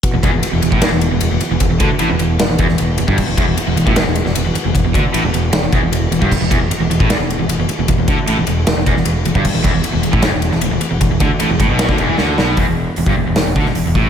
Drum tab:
CC |----------------|----------------|x---------------|----------------|
RD |x-x-x-x-x-x-x-x-|x-x-x-x-x-x-x-x-|--x-x-x-x-x-x-x-|x-x-x-x-x-x-x-x-|
HH |----------------|----------------|----------------|----------------|
SD |--------o-------|--------o--o----|--------o--o----|--------o-------|
BD |o-o----o--------|o-o-------o----o|o-o----o--------|o-o-------o----o|

CC |x---------------|----------------|x---------------|----------------|
RD |--x-x-x-x-x-x-x-|x-x-x-x-x-x-x-x-|--x-x-x-x-x-x-x-|x-x-x-x-x-x-----|
HH |----------------|----------------|----------------|----------------|
SD |--------o-------|--------o--o----|--------o--o----|--------o---o-o-|
BD |o-o----o--------|o-o-------o----o|o-o----o--------|o-o---o--o------|

CC |----------------|
RD |----------------|
HH |o---o---o---o---|
SD |--------o--o----|
BD |o----o----o---o-|